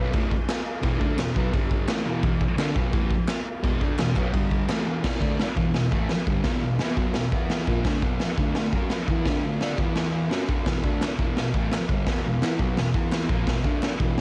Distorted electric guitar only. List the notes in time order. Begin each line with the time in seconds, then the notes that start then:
Already playing: B2 F#3 B3
0.14 A2 E3 A3
0.83 E2 B2 E3
0.99 D3 A3 D4
1.18 E2 B2
1.35 B2 F#3 B3
1.52 G2 D3 G3
1.87 A2 E3 A3
2.06 E2 B2 E3
2.23 E2 B2 E3
2.41 muted distorted electric guitar stroke
2.57 D3 A3 D4
2.76 B2 F#3 B3
2.93 A2 E3 A3
3.63 E2 B2 E3
3.82 D3 A3 D4
3.98 E2 B2
4.16 B2 F#3 B3
4.33 G2 D3 G3
4.68 A2 E3 A3
4.86 E2 B2 E3
5.03 E2 B2 E3
5.20 D3 A3 D4
5.38 muted distorted electric guitar stroke
5.56 E2 B2 E3
5.75 E2 B2
5.91 A2 E3 A3
6.10 muted distorted electric guitar stroke
6.27 G2 D3 G3
6.45 E2 B2 E3
6.63 E2 B2
6.80 E3 B3 E4
6.97 B2 F#3 B3
7.15 E2 B2
7.33 E3 B3 E4
7.67 A#2 F3 A#3
7.85 D3 A3 D4
8.03 B2 F#3 B3
8.21 muted distorted electric guitar stroke
8.39 D3 A3 D4
8.57 D3 A3
8.74 F#3 C#4 F#4
8.92 muted distorted electric guitar stroke
9.09 E3 B3 E4
9.27 D3 A3 D4
9.44 D3 A3
9.61 D4 A4 D5
9.79 E3 B3 E4
10.31 F#3 C#4 F#4
10.49 D3 A3 D4
10.67 E2 B2 E3
10.84 D3 A3 D4
11.02 muted distorted electric guitar stroke
11.19 E2 B2 E3
11.38 E2 B2
11.54 A2 E3 A3
11.73 muted distorted electric guitar stroke
11.91 G2 D3 G3
12.07 E2 B2 E3
12.25 E2 B2
12.42 E3 B3 E4
12.60 B2 F#3 B3
12.77 E2 B2
12.95 E3 B3 E4
13.30 A#2 F3 A#3
13.48 E2 B2 E3
13.65 D3 A3 D4
13.84 muted distorted electric guitar stroke
14.00 E2 B2 E3